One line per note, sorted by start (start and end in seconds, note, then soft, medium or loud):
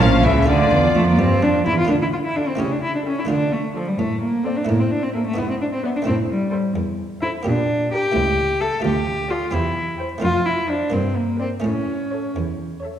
0.00 0.23 A#1 medium
0.00 0.21 A#2 medium
0.00 0.24 A#2 medium
0.00 0.25 F3 medium
0.00 0.41 A3 medium
0.00 0.44 C#4 medium
0.00 0.47 C#4 medium
0.00 0.45 E4 medium
0.00 0.23 F5 medium
0.00 0.24 F5 loud
0.23 0.47 C#2 medium
0.23 0.45 C#3 medium
0.23 0.47 C#3 medium
0.23 0.46 E3 medium
0.23 0.47 E5 medium
0.23 0.48 E5 medium
0.43 0.68 A3 medium
0.43 1.84 D4 medium
0.43 1.85 F4 medium
0.47 0.71 D2 medium
0.47 0.94 D3 medium
0.47 0.69 D3 medium
0.47 0.71 D3 medium
0.47 1.67 F4 medium
0.47 1.17 D5 medium
0.47 1.19 D5 medium
0.71 0.94 E2 medium
0.71 0.93 E3 medium
0.71 0.95 E3 medium
0.94 1.18 F2 medium
0.94 1.18 F3 medium
0.94 1.16 F3 medium
0.94 1.06 A3 medium
1.08 1.20 A#3 medium
1.18 1.42 G2 medium
1.18 1.42 G3 medium
1.18 1.40 G3 medium
1.18 1.44 C4 medium
1.42 1.66 F2 medium
1.42 1.66 F3 medium
1.42 1.64 F3 medium
1.42 1.66 D4 medium
1.66 1.74 E2 medium
1.66 1.87 E3 medium
1.66 1.74 E3 medium
1.66 1.78 E4 medium
1.78 1.89 F4 medium
1.85 2.54 A3 soft
1.85 2.56 D4 soft
1.85 2.57 F4 soft
1.89 2.45 D3 medium
1.89 2.45 D3 soft
1.89 1.94 D4 medium
2.02 2.06 E4 medium
2.13 2.17 F4 medium
2.25 2.37 E4 medium
2.36 2.49 D4 medium
2.36 2.54 A4 soft
2.36 2.54 F5 soft
2.36 2.54 A5 soft
2.48 2.61 C4 medium
2.55 3.24 A3 soft
2.55 2.73 C#4 medium
2.55 3.26 E4 soft
2.55 3.27 G4 soft
2.60 3.15 C#3 medium
2.60 3.15 C#3 soft
2.72 2.82 D4 medium
2.83 2.94 E4 medium
2.95 2.99 D4 medium
3.06 3.20 C#4 medium
3.06 3.23 A4 soft
3.06 3.24 E5 soft
3.06 3.24 G5 medium
3.18 3.29 E4 medium
3.25 3.85 D3 medium
3.25 4.63 A3 soft
3.25 4.64 D4 soft
3.25 4.64 F4 soft
3.29 3.85 D3 soft
3.29 3.54 D4 medium
3.52 3.75 A3 medium
3.76 3.89 F3 medium
3.76 3.93 A4 soft
3.76 3.93 D5 soft
3.76 3.93 F5 soft
3.87 4.00 G3 medium
3.98 4.54 A2 medium
3.98 4.54 A2 soft
3.98 4.21 A3 medium
4.21 4.46 A#3 medium
4.44 4.58 C4 medium
4.44 4.63 A4 medium
4.44 4.63 D5 soft
4.44 4.63 F5 medium
4.57 4.70 D4 medium
4.65 5.34 A3 soft
4.65 4.81 A#3 medium
4.65 5.35 E4 soft
4.69 5.24 A2 soft
4.69 5.24 A2 medium
4.80 4.92 C4 medium
4.91 5.04 D4 medium
5.03 5.13 C4 medium
5.14 5.26 A#3 medium
5.14 5.32 A4 medium
5.14 5.32 E5 soft
5.14 5.32 E5 medium
5.26 5.39 A3 medium
5.34 6.03 B3 soft
5.34 5.49 B3 medium
5.34 6.04 D4 soft
5.34 6.04 E4 soft
5.38 5.93 G#2 medium
5.38 5.93 G#2 soft
5.50 5.54 C4 medium
5.61 5.65 D4 medium
5.73 5.84 C4 medium
5.84 5.89 B3 medium
5.84 6.01 B4 medium
5.84 6.01 D5 medium
5.84 6.01 E5 medium
5.96 6.00 D4 medium
6.02 7.40 A3 soft
6.02 7.40 C4 soft
6.02 7.41 E4 soft
6.07 6.62 A2 medium
6.07 6.62 A2 soft
6.07 6.15 C4 medium
6.30 6.53 G3 medium
6.53 6.70 A4 medium
6.53 6.70 C5 medium
6.53 6.70 E5 medium
6.76 7.31 E2 soft
6.76 7.31 E2 medium
7.22 7.30 E4 medium
7.22 7.40 A4 medium
7.22 7.40 C5 medium
7.22 7.40 E5 medium
7.43 8.02 A#2 soft
7.43 8.02 A#2 medium
7.43 8.12 A#3 soft
7.43 7.92 D4 medium
7.43 8.13 G4 soft
7.92 8.62 G4 medium
7.92 8.10 G4 medium
7.92 8.10 A#4 medium
7.92 8.10 G5 medium
8.12 8.79 A3 soft
8.12 8.81 E4 soft
8.16 8.70 C#2 soft
8.16 8.71 C#2 medium
8.61 8.83 A4 medium
8.61 8.79 A4 medium
8.61 8.79 E5 medium
8.80 9.49 A3 soft
8.80 9.50 F4 soft
8.80 9.32 G4 medium
8.85 9.39 D2 medium
9.30 9.55 F4 medium
9.30 9.48 A4 medium
9.30 9.48 D5 medium
9.30 9.48 F5 medium
9.51 10.09 E2 soft
9.51 10.09 E2 medium
9.51 10.19 C4 soft
9.51 10.00 E4 medium
9.51 10.20 G4 soft
10.00 10.17 C5 medium
10.00 10.18 G5 medium
10.18 10.88 A3 soft
10.18 10.89 C4 soft
10.18 10.90 F4 soft
10.22 10.78 F2 soft
10.22 10.79 F2 medium
10.22 10.47 F4 medium
10.45 10.71 E4 medium
10.69 10.94 D4 medium
10.69 10.87 C5 medium
10.69 10.87 F5 medium
10.69 10.87 A5 soft
10.90 11.50 G2 soft
10.90 11.50 G2 medium
10.90 11.61 A#3 soft
10.90 11.18 C4 medium
10.90 11.61 D4 soft
11.16 11.39 A#3 medium
11.40 11.48 C4 medium
11.40 11.58 A#4 soft
11.40 11.58 D5 soft
11.40 11.58 G5 medium
11.60 12.99 A3 soft
11.60 12.99 C#4 soft
11.64 12.21 A2 soft
11.64 12.22 A2 medium
11.64 12.35 C#4 medium
12.12 12.30 A4 soft
12.12 12.30 C#5 soft
12.12 12.30 E5 soft
12.36 12.93 E2 medium
12.36 12.93 E2 soft
12.84 12.99 A4 soft
12.84 12.99 C#5 soft
12.84 12.99 E5 medium